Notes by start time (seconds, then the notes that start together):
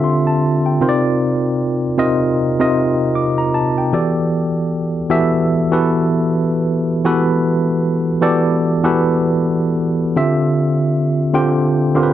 Already playing: D3 C4 F4 G4 E5
0.04 C6
0.27 A5
0.66 G5
0.81 C3 C4 D#4 F4 A#4 C5
0.89 D5
1.98 C3 C4 D#4 F4 A#4 D#5
2.60 C3 C4 D#4 F4 A#4 D#5
3.15 D6
3.38 A#5
3.54 A5
3.78 G5
3.93 E3 B3 F#4 G4 A4 D5
5.09 E3 B3 F#4 G4 A4 E5
5.71 E3 B3 F#4 G4 A4 B4
7.05 E3 B3 F#4 G4 A4 B4
8.21 E3 B3 F#4 G4 A4 D5
8.83 E3 B3 F#4 G4 A4 B4
10.16 D3 C4 F4 G4 E5
11.33 D3 C4 F4 G4 G5
11.95 D3 C4 F4 G4 A#4
12.03 B4